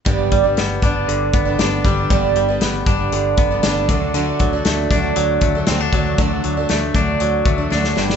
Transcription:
<<
  \new Staff \with { instrumentName = "Clean electric guitar" } { \time 4/4 \key d \mixolydian \tempo 4 = 118 g,8 g8 b8 d'8 d8 b8 d'8 g8 | g,8 g8 b8 d'8 d8 b8 d'8 d8 | d8 fis8 a8 d'8 fis8 a8 c'16 d'16 fis8 | d8 fis8 a8 d'8 fis8 a8 d'8 g,8 | }
  \new Staff \with { instrumentName = "Twelve-string acoustic guitar" } { \time 4/4 \key d \mixolydian <g, d g b d'>8. <g b d'>8. <d g b d'>4~ <d g b d'>16 <g b d'>16 <d g b d'>8 <d g b d'>8 | <g, d g b d'>8. <g b d'>8. <d g b d'>4~ <d g b d'>16 <g b d'>16 <d g b d'>8 <d fis a d'>8 | <d fis a d'>8. <fis a d'>8. <d fis a d'>4~ <d fis a d'>16 <fis a d'>16 <d fis a d'>8 <d fis a d'>8 | <d fis a d'>8. <fis a d'>8. <d fis a d'>4~ <d fis a d'>16 <fis a d'>16 <d fis a d'>8 <d g b d'>8 | }
  \new Staff \with { instrumentName = "Fingered electric bass" } { \clef bass \time 4/4 \key d \mixolydian g,,8 g,,8 g,,8 g,,8 g,,8 g,,8 g,,8 g,,8 | g,,8 g,,8 g,,8 g,,8 g,,8 g,,8 g,,8 d,8~ | d,8 d,8 d,8 d,8 d,8 d,8 d,8 d,8 | d,8 d,8 d,8 d,8 d,8 d,8 d,8 g,,8 | }
  \new DrumStaff \with { instrumentName = "Drums" } \drummode { \time 4/4 <hh bd>8 <hh bd>8 <hh sn>8 <hh bd>8 hh8 <hh bd>8 <hh sn>8 <hh bd>8 | <hh bd>8 hh8 <hh sn>8 <hh bd>8 hh8 <hh bd>8 <hh sn>8 <hh bd>8 | hh8 <hh bd>8 <hh sn>8 <hh bd>8 hh8 <hh bd>8 <hh sn>8 <hh bd>8 | <hh bd>8 hh8 <hh sn>8 <hh bd>8 hh8 <hh bd>8 sn16 sn16 sn16 sn16 | }
>>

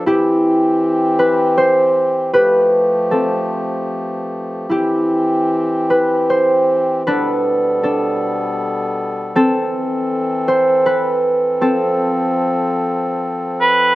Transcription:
<<
  \new Staff \with { instrumentName = "Bagpipes" } { \time 3/4 \key f \lydian \tempo 4 = 78 r2. | r2. | r2. | r2. |
r2. | r2 r8 b'8 | }
  \new Staff \with { instrumentName = "Harp" } { \time 3/4 \key f \lydian <e' g'>4. b'8 c''4 | <g' b'>4 <c' a'>4. r8 | <e' g'>4. b'8 c''4 | <d' b'>4 <d' a'>4. r8 |
<c' a'>4. c''8 b'4 | <c' a'>2~ <c' a'>8 r8 | }
  \new Staff \with { instrumentName = "Harmonium" } { \time 3/4 \key f \lydian g'2. | g'2.~ | g'2. | a'2.~ |
a'2.~ | a'2. | }
  \new Staff \with { instrumentName = "Harmonium" } { \clef bass \time 3/4 \key f \lydian << { c'2. | a2. | c'2. | <b, b>2. |
c'2.~ | c'2. | } \\ { e2. | f2. | e2. | g2. |
e2. | f2. | } >> }
>>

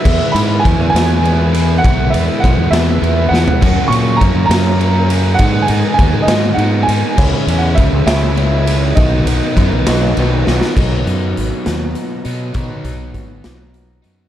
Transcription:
<<
  \new Staff \with { instrumentName = "Upright piano" } { \time 6/8 \key b \major \tempo 4. = 67 e''8 b''8 gis''8 gis''4. | fis''8 e''8 fis''8 e''4 fis''8~ | fis''8 cis'''8 ais''8 ais''4. | fis''8 gis''8 gis''8 dis''8 fis''8 gis''8~ |
gis''8. fis''16 e''8 e''4. | dis''2 r4 | r2. | r2. | }
  \new Staff \with { instrumentName = "Overdriven electric guitar" } { \time 6/8 \key b \major <e gis b e'>8 <gis b e'>8 <e gis b e'>8 <gis b e'>8 <e gis b e'>8 <gis b e'>8 | <e gis b e'>8 <gis b e'>8 <e gis b e'>8 <gis b e'>8 <e gis b e'>8 <gis b e'>8 | <fis, cis fis ais cis'>8 <fis ais cis'>8 <cis fis ais cis'>8 <fis ais cis'>8 <cis fis ais cis'>8 <fis ais cis'>8 | <gis, dis gis b dis'>8 <gis b dis'>8 <dis gis b dis'>8 <gis b dis'>8 <dis gis b dis'>8 <gis b dis'>8 |
<cis gis cis' e'>8 <gis cis' e'>8 <cis gis cis' e'>8 <gis cis' e'>8 <cis gis cis' e'>8 <gis cis' e'>8 | <b, dis fis b dis'>8 <fis b dis'>8 <dis fis b dis'>8 <fis b dis'>8 <dis fis b dis'>8 <fis b dis'>8 | <b, fis b dis'>2~ <b, fis b dis'>8 <b, fis b dis'>8 | <b, fis b dis'>2~ <b, fis b dis'>8 <b, fis b dis'>8 | }
  \new Staff \with { instrumentName = "Fingered electric bass" } { \clef bass \time 6/8 \key b \major e,16 r16 gis,8 e,16 e,16 e,4. | b,,8 e,16 r16 b,,16 e,16 e,8 e,8 e,16 r16 | fis,16 r16 ais,8 fis,16 fis,16 fis,4. | gis,8 gis,16 r16 dis,16 gis,16 gis,8 gis,8 gis,16 r16 |
cis,16 r16 e,8 cis,16 cis,16 cis,4. | b,,8 b,,16 r16 fis,16 b,,16 b,,8 b,,8 b,,16 r16 | b,,8 fis,8 gis,,16 r16 dis,8 r8 b,8 | b,16 r16 b,,8 gis,,8 b,,4 fis,8 | }
  \new DrumStaff \with { instrumentName = "Drums" } \drummode { \time 6/8 <cymc bd>8 cymr8 <bd cymr>8 <cymr sn>8 cymr8 cymr8 | <bd cymr>8 cymr8 <bd cymr>8 <cymr sn>8 cymr8 sn16 tomfh16 | <cymc bd>8 cymr8 <bd cymr>8 <cymr sn>8 cymr8 cymr8 | <bd cymr>8 cymr8 <bd cymr>8 <cymr sn>8 cymr8 cymr8 |
<cymc bd>8 cymr8 <bd cymr>8 <cymr sn>8 cymr8 cymr8 | <bd cymr>8 cymr8 <bd cymr>8 <cymr sn>8 cymr8 sn16 sn16 | <cymc bd>8 hh8 hh8 <hh sn>8 hh8 hh8 | <hh bd>8 hh8 <hh bd>8 <hh sn>8 hh8 hh8 | }
>>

